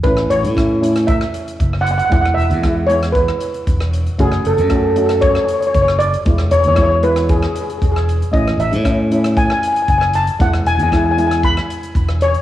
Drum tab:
HH |x-xxx-xxx-xxx-xx|x-xxx-xxx-xxx-xx|x-xxx-xxx-xxx-xx|x-xxx-xxx-xxx-xx|
SD |-r--r--r-r---r--|-r--r--r-r---r--|-r--r--r-r---r--|-r--r--r-r---r--|
BD |o---o---o---o---|o---o---o---o---|o---o---o---o---|o---o---o---o---|

HH |x-xxx-xxx-xxx-xx|x-xxx-xxx-xxx-xx|
SD |-r--r--r-r---r--|-r--r--r-r---r--|
BD |o---o---o---o---|o---o---o---o---|